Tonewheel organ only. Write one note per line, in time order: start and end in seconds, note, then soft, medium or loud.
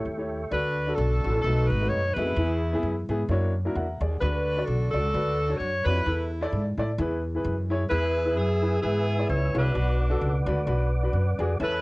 0.00 0.52 A4 medium
0.00 0.52 E5 medium
0.00 0.52 G5 soft
0.00 0.52 C#6 medium
7.90 11.56 B4 medium
7.90 9.73 E5 medium
7.90 9.73 G#5 medium
7.90 9.73 E6 medium
9.75 11.58 D5 medium
9.75 11.58 F#5 medium
9.75 11.58 D6 medium
11.60 11.81 C#5 medium
11.60 11.81 E5 medium
11.60 11.81 A5 medium
11.60 11.81 E6 medium